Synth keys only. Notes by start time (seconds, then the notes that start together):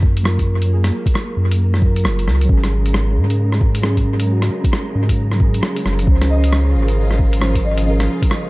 Already playing: F#3 F4 A#4
0.23 F#3 F4
0.27 A#4
0.65 F#3
0.69 F4
0.73 G#4
1.78 F#3
1.82 F4
1.86 A#4
2.45 F#3
2.49 C#4
2.53 G#4
3.81 F#3 C#4
3.85 G#4
4.24 F#3
4.28 C#4 F#4
5.36 F#3 C#4
5.44 G#4
6.03 F3 C#4
6.11 C5
7.39 F3 C#4
7.43 C5
7.82 F3 C#4
7.90 A#4